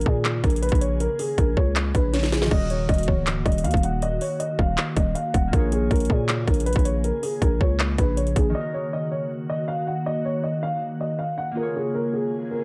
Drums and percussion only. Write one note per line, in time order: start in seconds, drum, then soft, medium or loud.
0.01 closed hi-hat medium
0.06 kick medium
0.25 clap loud
0.25 closed hi-hat medium
0.44 kick loud
0.44 closed hi-hat soft
0.50 closed hi-hat medium
0.56 closed hi-hat medium
0.63 closed hi-hat medium
0.69 kick loud
0.69 closed hi-hat medium
0.75 closed hi-hat soft
0.81 closed hi-hat medium
1.00 closed hi-hat medium
1.19 open hi-hat medium
1.38 kick medium
1.38 closed hi-hat medium
1.57 kick medium
1.76 clap loud
1.76 closed hi-hat medium
1.95 kick medium
1.95 closed hi-hat medium
2.14 snare medium
2.14 closed hi-hat medium
2.23 snare medium
2.23 closed hi-hat soft
2.32 snare loud
2.32 closed hi-hat medium
2.42 snare loud
2.51 kick loud
2.51 crash medium
2.70 closed hi-hat medium
2.89 kick medium
2.89 closed hi-hat medium
2.94 closed hi-hat medium
2.98 closed hi-hat medium
3.03 closed hi-hat medium
3.08 kick medium
3.27 clap loud
3.27 closed hi-hat medium
3.46 kick medium
3.46 closed hi-hat soft
3.52 closed hi-hat medium
3.58 closed hi-hat medium
3.64 closed hi-hat medium
3.71 kick loud
3.71 closed hi-hat medium
3.77 closed hi-hat soft
3.83 closed hi-hat medium
4.02 closed hi-hat medium
4.21 open hi-hat medium
4.40 closed hi-hat medium
4.59 kick medium
4.78 clap loud
4.78 closed hi-hat medium
4.97 kick medium
4.97 closed hi-hat medium
5.15 closed hi-hat medium
5.34 kick loud
5.34 closed hi-hat medium
5.53 kick loud
5.53 closed hi-hat medium
5.72 closed hi-hat medium
5.91 kick medium
5.91 closed hi-hat medium
5.96 closed hi-hat medium
6.00 closed hi-hat medium
6.05 closed hi-hat medium
6.10 kick medium
6.29 clap loud
6.29 closed hi-hat medium
6.48 kick medium
6.48 closed hi-hat soft
6.54 closed hi-hat medium
6.60 closed hi-hat medium
6.66 closed hi-hat medium
6.73 kick loud
6.73 closed hi-hat medium
6.79 closed hi-hat soft
6.85 closed hi-hat medium
7.04 closed hi-hat medium
7.23 open hi-hat medium
7.42 kick medium
7.42 closed hi-hat medium
7.61 kick medium
7.80 clap loud
7.80 closed hi-hat medium
7.98 kick medium
7.98 closed hi-hat medium
8.17 closed hi-hat medium
8.27 closed hi-hat soft
8.36 kick loud
8.36 closed hi-hat medium